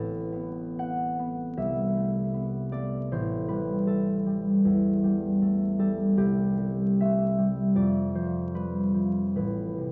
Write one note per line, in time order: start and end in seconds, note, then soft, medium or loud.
0.00 1.58 A1 soft
0.00 0.31 B3 soft
0.00 3.77 A4 medium
0.00 1.59 B4 medium
0.32 1.18 B3 soft
0.79 1.45 C4 soft
0.79 2.11 F#5 medium
1.19 1.60 B3 soft
1.57 3.15 C2 soft
1.57 5.47 E5 medium
1.97 2.71 A3 soft
2.34 2.99 B3 soft
2.72 3.85 A3 soft
2.72 3.14 D5 medium
3.12 6.22 A1 medium
3.12 7.02 C5 medium
3.48 4.25 G3 soft
3.48 4.15 B4 medium
3.86 4.54 A3 soft
3.86 5.78 A4 medium
4.26 5.02 G3 soft
4.65 6.21 E2 soft
5.04 5.78 G3 soft
5.42 6.06 A3 soft
5.79 6.57 G3 soft
5.79 6.21 A4 medium
6.17 7.79 C2 medium
6.17 7.79 G4 medium
6.58 7.37 G3 soft
7.01 7.65 A3 soft
7.01 9.92 E5 medium
7.38 7.79 G3 soft
7.75 9.40 F2 medium
7.75 8.43 D5 medium
8.15 8.93 F3 soft
8.15 9.92 C5 medium
8.54 9.24 G3 soft
8.54 9.35 B4 medium
8.94 9.40 F3 soft
9.35 9.92 A1 soft
9.35 9.92 B4 medium
9.78 9.92 C3 soft